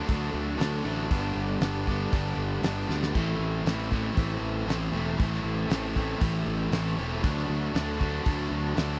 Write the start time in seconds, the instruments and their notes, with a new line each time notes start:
Already playing: tonewheel organ A3 D4 F#4 D5
0.06 fingered electric bass D2, overdriven electric guitar D3 F#3 A3 D4, kick, open hi-hat
0.34 fingered electric bass D2
0.58 fingered electric bass D2, overdriven electric guitar D3 F#3 A3 D4, snare, open hi-hat
0.84 fingered electric bass A1, overdriven electric guitar D3 F#3 A3 D4
1.09 fingered electric bass G1, overdriven electric guitar G2 D3 G3 B3 D4, tonewheel organ B3 D4 G4 D5, kick, open hi-hat
1.35 fingered electric bass G1
1.61 fingered electric bass G1, overdriven electric guitar G2 D3 G3 B3 D4, snare, open hi-hat
1.87 overdriven electric guitar G2 D3 G3 B3 D4, kick
2.12 fingered electric bass G1, overdriven electric guitar G2 D3 G3 B3 D4, kick, open hi-hat
2.37 fingered electric bass G1
2.62 fingered electric bass G1, overdriven electric guitar G2 D3 G3 B3 D4, snare, open hi-hat
2.88 fingered electric bass D2, overdriven electric guitar G2 D3 G3 B3 D4, snare
3.03 snare
3.13 fingered electric bass A1, overdriven electric guitar A2 E3 A3 C4 E4, tonewheel organ C4 E4 A4 E5, kick, crash
3.39 fingered electric bass A1
3.65 fingered electric bass A1, overdriven electric guitar A2 E3 A3 C4 E4, snare, open hi-hat
3.92 overdriven electric guitar A2 E3 A3 C4 E4, kick
4.15 fingered electric bass A1, overdriven electric guitar A2 E3 A3 C4 E4, kick, open hi-hat
4.41 fingered electric bass A1
4.67 fingered electric bass A1, overdriven electric guitar A2 E3 A3 C4 E4, snare, open hi-hat
4.92 fingered electric bass E1, overdriven electric guitar A2 E3 A3 C4 E4
5.18 fingered electric bass A1, overdriven electric guitar A2 E3 A3 C4 E4, kick, open hi-hat
5.34 snare
5.44 fingered electric bass A1
5.69 fingered electric bass A1, overdriven electric guitar A2 E3 A3 C4 E4, snare, open hi-hat
5.96 overdriven electric guitar A2 E3 A3 C4 E4, kick
6.20 fingered electric bass A1, overdriven electric guitar A2 E3 A3 C4 E4, kick, open hi-hat
6.46 fingered electric bass A1
6.71 fingered electric bass A1, overdriven electric guitar A2 E3 A3 C4 E4, snare, open hi-hat
6.97 fingered electric bass E1, overdriven electric guitar A2 E3 A3 C4 E4
7.22 fingered electric bass D2, overdriven electric guitar D3 F#3 A3 D4, tonewheel organ D4 F#4 A4 F#5, kick, open hi-hat
7.38 snare
7.49 fingered electric bass D2
7.74 fingered electric bass D2, overdriven electric guitar D3 F#3 A3 D4, snare, open hi-hat
7.99 overdriven electric guitar D3 F#3 A3 D4, kick
8.25 fingered electric bass D2, overdriven electric guitar D3 F#3 A3 D4, kick, open hi-hat
8.51 fingered electric bass D2
8.76 fingered electric bass D2, overdriven electric guitar D3 F#3 A3 D4, snare, open hi-hat